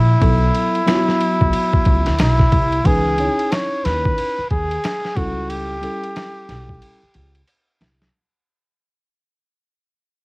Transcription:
Already playing: A#1 E4
0.20 B1 F#3 B3 E4 A4, kick, ride
0.54 ride
0.75 ride
0.86 F#3 B3 E4 F4, snare, hi-hat pedal, ride
0.95 F#4
1.09 snare
1.21 ride
1.41 C#2, kick
1.53 ride
1.73 kick
1.85 C#2, kick, ride
2.06 D2, snare, ride
2.19 B1 E4, snare, hi-hat pedal, ride
2.39 kick, snare
2.52 C2, kick, ride
2.72 ride
2.84 C#2 E3 C#4 D#4 G#4 B4, kick, ride
3.18 D#3 C#4 D#4 C#5, ride
3.24 E4
3.39 ride
3.52 C#5, snare, hi-hat pedal, ride
3.85 D#2 B4, snare, ride
4.05 kick
4.18 ride
4.38 muted upright bass stroke
4.50 D#2 G#4, kick, ride
4.71 ride
4.84 snare, hi-hat pedal, ride
5.05 snare
5.15 C#2 G3 C#4 E4 F#4 A4, kick, ride
5.49 G4, ride
5.81 G3 C#4 E4 A4, ride
6.03 ride
6.16 snare, hi-hat pedal, ride
6.49 B1, snare, ride
6.69 kick
6.82 ride
7.03 muted upright bass stroke
7.14 C#2, ride
7.35 ride
7.48 hi-hat pedal, ride
7.81 C2, snare, ride
8.02 snare

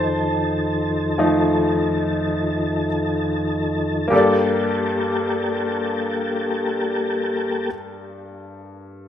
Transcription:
Already playing: F2 D#3 A4 C5 A5
1.18 F3 A3 D#4
4.08 G2 A#3 G4
4.13 A#3 G4 A4 D5

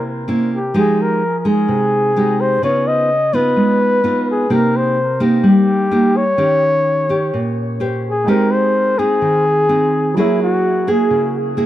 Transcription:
Already playing: C3 A#3 E4
0.28 A#3 C#4 E4
0.55 G4
0.74 F3 G#3 D#4 G4
0.79 G#4
1.02 A#4
1.39 A#4
1.45 G#3 D#4 G#4
1.68 C3
2.16 G#3 D#4 G4
2.41 C5
2.62 C#3 B3 D#4 F4 C#5
2.87 D#5
3.33 B3 D#4 F4 B4
3.57 G#3
4.04 B3 D#4 F4
4.31 G#4
4.50 C3 A#3 D#4 G4
4.54 A#4
4.77 C5
5.20 A#3 D#4 G4
5.43 G3 G4
5.91 A#3 D#4 G4
6.17 C#5
6.38 D#3 C#4 G4
7.09 C#4 G4
7.34 A#2
7.80 C#4 G4 C5
8.06 G#4
8.24 G#3 C4 D#4 G5
8.28 D#4 G4 A#4 C5
8.52 C5
8.99 C4 D#4 G#4
9.22 D#3
9.69 C4 D#4
10.14 F#3 A#3 E4 G#4
10.18 E4 G#4 A#4 C#5
10.43 F#4
10.87 A#3 E4 G#4
11.10 C#3
11.57 A#3 E4 G#4

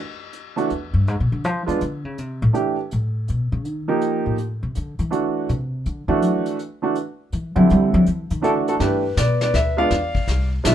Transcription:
0.33 closed hi-hat
0.56 E3 A3 D4 F#4, closed hi-hat
0.70 E2, closed hi-hat
0.94 G2
1.07 G#2, closed hi-hat
1.20 B2
1.32 D3
1.44 F3, closed hi-hat
1.66 E3 G#3 B3 D4 F4, closed hi-hat
1.81 D3, closed hi-hat
2.05 C#3
2.18 C3, closed hi-hat
2.42 A2
2.53 E3 A3 D4 G4, closed hi-hat
2.91 A2, closed hi-hat
3.28 B2, closed hi-hat
3.52 C#3
3.65 D#3, closed hi-hat
3.88 F3 A#3 D#4 G4
4.01 closed hi-hat
4.26 A2
4.38 closed hi-hat
4.63 C3
4.75 D3, closed hi-hat
4.99 E3, closed hi-hat
5.11 E3 A3 D4 F#4, closed hi-hat
5.49 C3, closed hi-hat
5.86 D3, closed hi-hat
6.08 E3 A3 D4 F#4
6.22 F#3, closed hi-hat
6.46 closed hi-hat
6.59 closed hi-hat
6.82 E3 A3 D4 F#4
6.95 closed hi-hat
7.32 E3, closed hi-hat
7.56 D3 F#3 G3 C4 E4
7.70 G3, closed hi-hat
7.94 F#3
8.06 E3, closed hi-hat
8.30 D#3, closed hi-hat
8.42 D3 E3 A3 D4 E4 F#4 A4, closed hi-hat
8.68 F#4 A4, closed hi-hat
8.79 G2 E3 A3 D4 G4 B4, brush sweep, kick, snare
9.17 B2 B4 D5, kick, snare, hi-hat pedal
9.41 B4 D5, snare
9.54 D2 B4 E5, kick, snare
9.77 G#3 B3 D4 F4 D5 F5
9.91 E2, brush sweep, kick, snare
10.15 kick
10.28 C2, kick, snare
10.64 B1 G#3 B3 D4 F4 B4 E5, kick, snare, hi-hat pedal

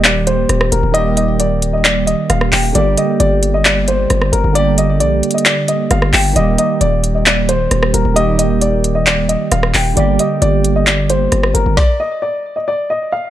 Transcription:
Already playing: D#1 D#3 G3 A#3 G4
0.04 D5, clap, closed hi-hat
0.27 C5, closed hi-hat
0.49 D#1, cross-stick, closed hi-hat
0.61 cross-stick
0.72 D#1 A#4, closed hi-hat
0.83 D#1
0.92 D#3 G3 A#3 D#5, closed hi-hat
0.98 G4
1.17 D#5, closed hi-hat
1.40 D5, closed hi-hat
1.62 closed hi-hat
1.73 D#5
1.84 D5, clap, closed hi-hat
2.07 D#5, closed hi-hat
2.30 D#1 F5, cross-stick, closed hi-hat
2.41 cross-stick
2.52 D#1 G5, clap, open hi-hat
2.72 G1 D3 G3 A#3 D5, closed hi-hat
2.78 G4
2.98 D#5, closed hi-hat
3.20 G1 D5, closed hi-hat
3.43 closed hi-hat
3.54 D#5
3.65 D5, clap, closed hi-hat
3.88 C5, closed hi-hat
4.10 G1, cross-stick, closed hi-hat
4.22 cross-stick
4.32 G1 A#4, closed hi-hat
4.44 G1
4.53 D3 G3 A#3 D5, closed hi-hat
4.58 G4
4.78 D#5, closed hi-hat
5.00 A#1 D5, closed hi-hat
5.23 closed hi-hat
5.31 D#5, closed hi-hat
5.38 closed hi-hat
5.46 D5, clap, closed hi-hat
5.68 D#5, closed hi-hat
5.91 G1 F5, cross-stick, closed hi-hat
6.02 cross-stick
6.13 G1 G5, clap, open hi-hat
6.33 D#1 D#3 G3 A#3 D#5, closed hi-hat
6.39 G4
6.58 D#5, closed hi-hat
6.81 D#1 D5, closed hi-hat
7.04 closed hi-hat
7.15 D#5
7.26 D5, clap, closed hi-hat
7.49 C5, closed hi-hat
7.71 D#1, cross-stick, closed hi-hat
7.83 cross-stick
7.94 D#1 A#4, closed hi-hat
8.05 D#1
8.14 D#3 G3 A#3 D#5, closed hi-hat
8.19 G4
8.39 D#5, closed hi-hat
8.61 D5, closed hi-hat
8.84 closed hi-hat
8.95 D#5
9.06 D5, clap, closed hi-hat
9.29 D#5, closed hi-hat
9.52 D#1 F5, cross-stick, closed hi-hat
9.63 cross-stick
9.74 D#1 G5, clap, open hi-hat
9.94 G1 D3 G3 A#3 D5, closed hi-hat
10.00 G4
10.19 D#5, closed hi-hat
10.42 G1 D5, closed hi-hat
10.64 closed hi-hat
10.76 D#5
10.87 D5, clap, closed hi-hat
11.10 C5, closed hi-hat
11.32 G1, cross-stick, closed hi-hat
11.43 cross-stick
11.54 G1 A#4, closed hi-hat
11.66 G1
11.77 D5, kick, snare
12.00 D#5
12.22 D5
12.56 D#5
12.68 D5
12.90 D#5
13.12 F5

